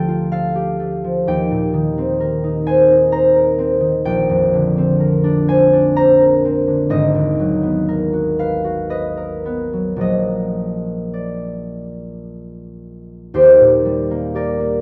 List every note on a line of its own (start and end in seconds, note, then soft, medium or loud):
0.00 1.30 D2 medium
0.00 1.30 D3 soft
0.00 1.03 F3 medium
0.00 0.78 A3 medium
0.00 1.02 D4 soft
0.00 0.54 G4 medium
0.00 0.31 A4 medium
0.00 1.26 G5 medium
0.00 1.27 A5 medium
0.00 2.28 A#5 loud
0.08 1.31 F4 medium
0.32 1.31 A4 medium
0.32 1.30 F5 medium
0.56 4.46 G4 medium
0.80 1.30 A3 medium
1.04 1.31 F3 medium
1.27 4.11 D#2 medium
1.27 4.04 G5 medium
1.51 4.11 A#2 soft
1.74 3.79 D#3 medium
1.98 3.57 C4 medium
2.20 3.35 A#4 medium
2.44 2.89 D#4 medium
2.67 3.11 C5 medium
2.67 3.46 G#5 loud
2.90 4.11 D#4 medium
3.12 5.47 C5 medium
3.12 5.95 A#5 loud
3.36 4.99 A#4 medium
3.58 4.76 C4 medium
3.80 4.09 D#3 medium
4.05 6.94 A#1 medium
4.05 6.94 G5 loud
4.30 6.94 F2 medium
4.53 6.66 D3 medium
4.77 6.43 C4 medium
5.00 6.20 A#4 medium
5.24 5.72 D4 medium
5.48 5.95 C5 medium
5.48 9.39 G#5 loud
5.73 6.94 D4 medium
5.96 6.95 C5 medium
5.96 9.86 A#5 loud
6.21 7.87 A#4 medium
6.45 6.95 C4 medium
6.68 6.95 D3 soft
6.90 10.05 G#1 medium
6.90 8.89 D#5 loud
7.15 10.05 D#2 medium
7.39 9.72 F#3 medium
7.63 9.44 B3 soft
7.88 9.16 A#4 medium
8.13 8.63 F#4 medium
8.39 8.89 B4 medium
8.39 9.28 F5 medium
8.64 12.54 F#4 medium
8.90 10.05 B4 medium
8.90 10.00 D#5 medium
9.17 13.07 A#4 medium
9.45 10.06 B3 medium
9.73 9.96 F#3 soft
9.96 13.35 A#1 medium
9.96 13.36 F#3 soft
9.96 13.89 A#3 soft
9.96 13.37 G#4 soft
10.01 13.91 D#5 medium
11.14 13.37 D5 medium
13.34 14.81 D#2 medium
13.34 14.34 G4 medium
13.34 14.81 C5 loud
13.60 14.81 A#2 medium
13.85 14.81 G3 medium
14.11 14.59 A#3 medium
14.34 14.81 G4 medium
14.34 14.81 A#4 medium
14.34 14.81 D5 medium
14.60 14.81 A#3 medium